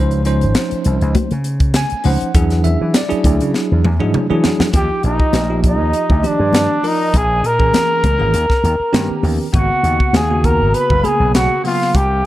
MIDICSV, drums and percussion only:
0, 0, Header, 1, 2, 480
1, 0, Start_track
1, 0, Tempo, 600000
1, 1874, Time_signature, 4, 2, 24, 8
1, 9809, End_track
2, 0, Start_track
2, 0, Title_t, "Drums"
2, 88, Note_on_c, 9, 42, 35
2, 168, Note_off_c, 9, 42, 0
2, 199, Note_on_c, 9, 42, 55
2, 279, Note_off_c, 9, 42, 0
2, 331, Note_on_c, 9, 42, 40
2, 411, Note_off_c, 9, 42, 0
2, 437, Note_on_c, 9, 42, 84
2, 440, Note_on_c, 9, 38, 114
2, 446, Note_on_c, 9, 62, 33
2, 517, Note_off_c, 9, 42, 0
2, 520, Note_off_c, 9, 38, 0
2, 526, Note_off_c, 9, 62, 0
2, 568, Note_on_c, 9, 42, 42
2, 648, Note_off_c, 9, 42, 0
2, 675, Note_on_c, 9, 42, 63
2, 755, Note_off_c, 9, 42, 0
2, 811, Note_on_c, 9, 42, 39
2, 891, Note_off_c, 9, 42, 0
2, 918, Note_on_c, 9, 36, 75
2, 918, Note_on_c, 9, 42, 86
2, 923, Note_on_c, 9, 62, 30
2, 923, Note_on_c, 9, 63, 100
2, 998, Note_off_c, 9, 36, 0
2, 998, Note_off_c, 9, 42, 0
2, 1003, Note_off_c, 9, 62, 0
2, 1003, Note_off_c, 9, 63, 0
2, 1046, Note_on_c, 9, 42, 44
2, 1126, Note_off_c, 9, 42, 0
2, 1154, Note_on_c, 9, 42, 67
2, 1161, Note_on_c, 9, 62, 28
2, 1234, Note_off_c, 9, 42, 0
2, 1241, Note_off_c, 9, 62, 0
2, 1280, Note_on_c, 9, 42, 39
2, 1282, Note_on_c, 9, 36, 94
2, 1360, Note_off_c, 9, 42, 0
2, 1362, Note_off_c, 9, 36, 0
2, 1390, Note_on_c, 9, 42, 96
2, 1393, Note_on_c, 9, 38, 127
2, 1396, Note_on_c, 9, 63, 75
2, 1470, Note_off_c, 9, 42, 0
2, 1473, Note_off_c, 9, 38, 0
2, 1476, Note_off_c, 9, 63, 0
2, 1517, Note_on_c, 9, 42, 38
2, 1597, Note_off_c, 9, 42, 0
2, 1630, Note_on_c, 9, 46, 82
2, 1639, Note_on_c, 9, 63, 72
2, 1710, Note_off_c, 9, 46, 0
2, 1719, Note_off_c, 9, 63, 0
2, 1765, Note_on_c, 9, 42, 41
2, 1845, Note_off_c, 9, 42, 0
2, 1876, Note_on_c, 9, 42, 85
2, 1877, Note_on_c, 9, 36, 118
2, 1884, Note_on_c, 9, 62, 30
2, 1956, Note_off_c, 9, 42, 0
2, 1957, Note_off_c, 9, 36, 0
2, 1964, Note_off_c, 9, 62, 0
2, 2003, Note_on_c, 9, 42, 42
2, 2006, Note_on_c, 9, 38, 37
2, 2083, Note_off_c, 9, 42, 0
2, 2086, Note_off_c, 9, 38, 0
2, 2113, Note_on_c, 9, 42, 61
2, 2121, Note_on_c, 9, 64, 70
2, 2193, Note_off_c, 9, 42, 0
2, 2201, Note_off_c, 9, 64, 0
2, 2352, Note_on_c, 9, 42, 97
2, 2355, Note_on_c, 9, 38, 116
2, 2359, Note_on_c, 9, 62, 32
2, 2432, Note_off_c, 9, 42, 0
2, 2435, Note_off_c, 9, 38, 0
2, 2439, Note_off_c, 9, 62, 0
2, 2482, Note_on_c, 9, 42, 44
2, 2562, Note_off_c, 9, 42, 0
2, 2594, Note_on_c, 9, 36, 84
2, 2598, Note_on_c, 9, 42, 67
2, 2674, Note_off_c, 9, 36, 0
2, 2678, Note_off_c, 9, 42, 0
2, 2724, Note_on_c, 9, 42, 43
2, 2804, Note_off_c, 9, 42, 0
2, 2835, Note_on_c, 9, 38, 66
2, 2836, Note_on_c, 9, 62, 31
2, 2915, Note_off_c, 9, 38, 0
2, 2916, Note_off_c, 9, 62, 0
2, 3076, Note_on_c, 9, 47, 80
2, 3082, Note_on_c, 9, 62, 34
2, 3082, Note_on_c, 9, 63, 77
2, 3156, Note_off_c, 9, 47, 0
2, 3162, Note_off_c, 9, 62, 0
2, 3162, Note_off_c, 9, 63, 0
2, 3203, Note_on_c, 9, 47, 72
2, 3283, Note_off_c, 9, 47, 0
2, 3314, Note_on_c, 9, 45, 89
2, 3324, Note_on_c, 9, 63, 60
2, 3394, Note_off_c, 9, 45, 0
2, 3404, Note_off_c, 9, 63, 0
2, 3448, Note_on_c, 9, 63, 56
2, 3528, Note_off_c, 9, 63, 0
2, 3550, Note_on_c, 9, 38, 100
2, 3559, Note_on_c, 9, 64, 68
2, 3630, Note_off_c, 9, 38, 0
2, 3639, Note_off_c, 9, 64, 0
2, 3680, Note_on_c, 9, 38, 99
2, 3680, Note_on_c, 9, 64, 90
2, 3760, Note_off_c, 9, 38, 0
2, 3760, Note_off_c, 9, 64, 0
2, 3787, Note_on_c, 9, 42, 77
2, 3790, Note_on_c, 9, 36, 100
2, 3797, Note_on_c, 9, 62, 31
2, 3867, Note_off_c, 9, 42, 0
2, 3870, Note_off_c, 9, 36, 0
2, 3877, Note_off_c, 9, 62, 0
2, 4026, Note_on_c, 9, 42, 48
2, 4106, Note_off_c, 9, 42, 0
2, 4157, Note_on_c, 9, 36, 72
2, 4237, Note_off_c, 9, 36, 0
2, 4264, Note_on_c, 9, 63, 95
2, 4269, Note_on_c, 9, 42, 72
2, 4271, Note_on_c, 9, 38, 93
2, 4344, Note_off_c, 9, 63, 0
2, 4349, Note_off_c, 9, 42, 0
2, 4351, Note_off_c, 9, 38, 0
2, 4509, Note_on_c, 9, 42, 51
2, 4510, Note_on_c, 9, 36, 84
2, 4589, Note_off_c, 9, 42, 0
2, 4590, Note_off_c, 9, 36, 0
2, 4747, Note_on_c, 9, 42, 66
2, 4750, Note_on_c, 9, 62, 31
2, 4827, Note_off_c, 9, 42, 0
2, 4830, Note_off_c, 9, 62, 0
2, 4878, Note_on_c, 9, 36, 82
2, 4958, Note_off_c, 9, 36, 0
2, 4985, Note_on_c, 9, 62, 28
2, 4985, Note_on_c, 9, 63, 63
2, 4992, Note_on_c, 9, 42, 60
2, 5065, Note_off_c, 9, 62, 0
2, 5065, Note_off_c, 9, 63, 0
2, 5072, Note_off_c, 9, 42, 0
2, 5222, Note_on_c, 9, 63, 72
2, 5234, Note_on_c, 9, 42, 82
2, 5237, Note_on_c, 9, 38, 112
2, 5302, Note_off_c, 9, 63, 0
2, 5314, Note_off_c, 9, 42, 0
2, 5317, Note_off_c, 9, 38, 0
2, 5468, Note_on_c, 9, 62, 29
2, 5472, Note_on_c, 9, 46, 74
2, 5548, Note_off_c, 9, 62, 0
2, 5552, Note_off_c, 9, 46, 0
2, 5710, Note_on_c, 9, 36, 91
2, 5711, Note_on_c, 9, 42, 83
2, 5712, Note_on_c, 9, 62, 32
2, 5790, Note_off_c, 9, 36, 0
2, 5791, Note_off_c, 9, 42, 0
2, 5792, Note_off_c, 9, 62, 0
2, 5955, Note_on_c, 9, 42, 55
2, 6035, Note_off_c, 9, 42, 0
2, 6077, Note_on_c, 9, 36, 71
2, 6157, Note_off_c, 9, 36, 0
2, 6189, Note_on_c, 9, 63, 88
2, 6193, Note_on_c, 9, 42, 73
2, 6195, Note_on_c, 9, 38, 104
2, 6269, Note_off_c, 9, 63, 0
2, 6273, Note_off_c, 9, 42, 0
2, 6275, Note_off_c, 9, 38, 0
2, 6430, Note_on_c, 9, 36, 82
2, 6431, Note_on_c, 9, 42, 62
2, 6433, Note_on_c, 9, 63, 72
2, 6510, Note_off_c, 9, 36, 0
2, 6511, Note_off_c, 9, 42, 0
2, 6513, Note_off_c, 9, 63, 0
2, 6670, Note_on_c, 9, 42, 84
2, 6676, Note_on_c, 9, 62, 25
2, 6750, Note_off_c, 9, 42, 0
2, 6756, Note_off_c, 9, 62, 0
2, 6798, Note_on_c, 9, 36, 73
2, 6801, Note_on_c, 9, 38, 32
2, 6878, Note_off_c, 9, 36, 0
2, 6881, Note_off_c, 9, 38, 0
2, 6916, Note_on_c, 9, 42, 64
2, 6916, Note_on_c, 9, 62, 27
2, 6996, Note_off_c, 9, 42, 0
2, 6996, Note_off_c, 9, 62, 0
2, 7153, Note_on_c, 9, 42, 86
2, 7154, Note_on_c, 9, 63, 72
2, 7156, Note_on_c, 9, 38, 106
2, 7233, Note_off_c, 9, 42, 0
2, 7234, Note_off_c, 9, 63, 0
2, 7236, Note_off_c, 9, 38, 0
2, 7387, Note_on_c, 9, 62, 26
2, 7387, Note_on_c, 9, 64, 59
2, 7393, Note_on_c, 9, 46, 71
2, 7467, Note_off_c, 9, 62, 0
2, 7467, Note_off_c, 9, 64, 0
2, 7473, Note_off_c, 9, 46, 0
2, 7629, Note_on_c, 9, 42, 71
2, 7630, Note_on_c, 9, 36, 108
2, 7639, Note_on_c, 9, 62, 30
2, 7709, Note_off_c, 9, 42, 0
2, 7710, Note_off_c, 9, 36, 0
2, 7719, Note_off_c, 9, 62, 0
2, 7872, Note_on_c, 9, 42, 52
2, 7952, Note_off_c, 9, 42, 0
2, 8000, Note_on_c, 9, 36, 69
2, 8080, Note_off_c, 9, 36, 0
2, 8110, Note_on_c, 9, 63, 79
2, 8113, Note_on_c, 9, 42, 72
2, 8116, Note_on_c, 9, 38, 104
2, 8190, Note_off_c, 9, 63, 0
2, 8193, Note_off_c, 9, 42, 0
2, 8196, Note_off_c, 9, 38, 0
2, 8353, Note_on_c, 9, 36, 83
2, 8354, Note_on_c, 9, 42, 51
2, 8433, Note_off_c, 9, 36, 0
2, 8434, Note_off_c, 9, 42, 0
2, 8594, Note_on_c, 9, 42, 75
2, 8602, Note_on_c, 9, 62, 25
2, 8674, Note_off_c, 9, 42, 0
2, 8682, Note_off_c, 9, 62, 0
2, 8721, Note_on_c, 9, 36, 80
2, 8801, Note_off_c, 9, 36, 0
2, 8830, Note_on_c, 9, 62, 27
2, 8830, Note_on_c, 9, 63, 67
2, 8837, Note_on_c, 9, 42, 59
2, 8910, Note_off_c, 9, 62, 0
2, 8910, Note_off_c, 9, 63, 0
2, 8917, Note_off_c, 9, 42, 0
2, 9077, Note_on_c, 9, 42, 78
2, 9079, Note_on_c, 9, 38, 110
2, 9082, Note_on_c, 9, 63, 68
2, 9157, Note_off_c, 9, 42, 0
2, 9159, Note_off_c, 9, 38, 0
2, 9162, Note_off_c, 9, 63, 0
2, 9318, Note_on_c, 9, 46, 76
2, 9319, Note_on_c, 9, 62, 30
2, 9398, Note_off_c, 9, 46, 0
2, 9399, Note_off_c, 9, 62, 0
2, 9453, Note_on_c, 9, 38, 32
2, 9533, Note_off_c, 9, 38, 0
2, 9557, Note_on_c, 9, 36, 109
2, 9562, Note_on_c, 9, 42, 73
2, 9568, Note_on_c, 9, 62, 31
2, 9637, Note_off_c, 9, 36, 0
2, 9642, Note_off_c, 9, 42, 0
2, 9648, Note_off_c, 9, 62, 0
2, 9809, End_track
0, 0, End_of_file